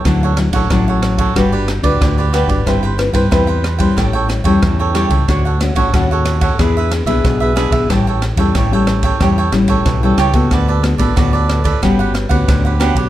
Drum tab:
RD |x-xxx-xxx-xxx-xx|x-xxx-xxx-xxx-xx|x-xxx-xxx-xxx-xx|x-xxx-xxx-xxx-xx|
SD |r-r-r-r-r-r-r-r-|r-r-r-r-r-r-r-r-|r-r-r-r-r-r-r-r-|r-r-r-r-r-r-r-r-|
BD |o--oo--oo--oo--o|o--oo--oo--oo--o|o--oo--oo--oo--o|o--oo--oo--oo--o|

RD |x-xxx-xxx-xxx-xx|
SD |r-r-r-r-r-r-r-r-|
BD |o--oo--oo--oo--o|